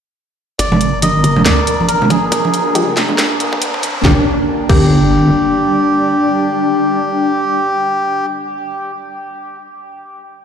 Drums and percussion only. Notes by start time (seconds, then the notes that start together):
0.59 kick, closed hi-hat
0.72 high conga, low conga
0.81 closed hi-hat
1.02 closed hi-hat, high conga
1.24 kick, closed hi-hat
1.36 high conga, low conga
1.46 snare, closed hi-hat
1.67 closed hi-hat
1.80 high conga
1.89 closed hi-hat
2.02 low conga
2.10 kick, closed hi-hat, high conga
2.32 kick, closed hi-hat
2.45 high conga
2.54 closed hi-hat
2.75 closed hi-hat, high conga
2.97 kick, snare, closed hi-hat
3.09 high conga, low conga
3.18 snare, closed hi-hat
3.40 closed hi-hat
3.52 kick, high conga
3.62 closed hi-hat
3.74 kick
3.83 closed hi-hat, high conga
4.05 kick, snare
4.69 kick, crash